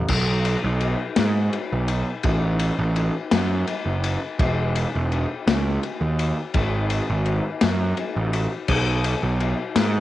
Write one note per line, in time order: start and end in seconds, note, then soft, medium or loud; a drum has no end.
0.08 0.55 B1 loud
0.08 kick loud
0.08 crash loud
0.45 ride medium
0.64 0.94 B1 loud
0.80 ride medium
1.16 1.48 G#2 loud
1.16 snare loud
1.16 ride loud
1.53 ride medium
1.72 2.02 B1 medium
1.88 ride medium
2.23 2.70 A1 loud
2.23 kick loud
2.23 ride loud
2.59 ride medium
2.79 3.09 A1 loud
2.96 ride medium
3.31 3.63 F#2 medium
3.31 snare loud
3.31 ride loud
3.67 ride medium
3.86 4.16 F#1 medium
4.04 ride medium
4.39 4.85 E1 loud
4.39 kick loud
4.39 ride loud
4.75 ride medium
4.95 5.25 E1 loud
5.12 ride medium
5.47 5.77 C#2 medium
5.47 snare loud
5.47 ride medium
5.83 ride medium
6.01 6.31 D#2 medium
6.19 ride medium
6.54 7.00 G#1 loud
6.54 kick loud
6.54 ride medium
6.90 ride medium
7.10 7.39 G#1 loud
7.25 ride medium
7.61 7.92 F#2 medium
7.61 snare loud
7.61 ride medium
7.97 ride medium
8.16 8.46 A1 medium
8.33 ride medium
8.68 9.14 B1 loud
8.68 kick loud
8.68 crash medium
9.04 ride medium
9.23 9.53 B1 loud
9.40 ride medium
9.76 10.00 G#2 medium
9.76 snare loud
9.76 ride loud